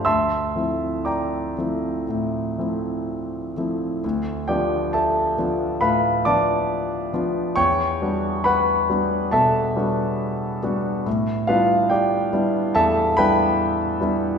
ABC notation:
X:1
M:4/4
L:1/8
Q:1/4=68
K:Dm
V:1 name="Grand piano"
[eac'e']2 [dgbd']4- [dgbd'] z | z [Gdg] [Aea]2 [=Bf=b] [dad']3 | [^cg^c']2 [=B^f=b]2 [Aea]3 z | z [F=Bf] [Gdg]2 [Aea] [Bg=b]3 |]
V:2 name="Grand piano"
D,, [F,A,CE]2 [F,A,CE] A,, [F,A,CE]2 [F,A,CE] | D,, [F,=B,DF]2 [F,B,DF] A,, [F,B,DF]2 [F,B,DF] | E,, [G,=B,D^F]2 [G,B,DF] =B,, [G,B,DF]2 [G,B,DF] | A,, [G,=B,DE]2 [G,B,DE] E,, [G,B,DE]2 [G,B,DE] |]